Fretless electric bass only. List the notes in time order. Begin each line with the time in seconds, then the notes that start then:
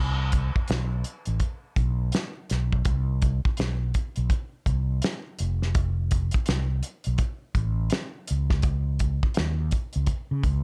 Already playing: C2
0.56 muted fretless electric bass stroke
0.70 B1
1.27 A1
1.77 B1
2.51 B1
2.86 C2
3.59 B1
4.17 B1
4.68 C2
5.40 F1
6.35 muted fretless electric bass stroke
6.48 C2
7.07 B1
7.56 A1
8.31 C#2
9.39 D#2
9.96 C#2
10.31 C#3
10.44 C#2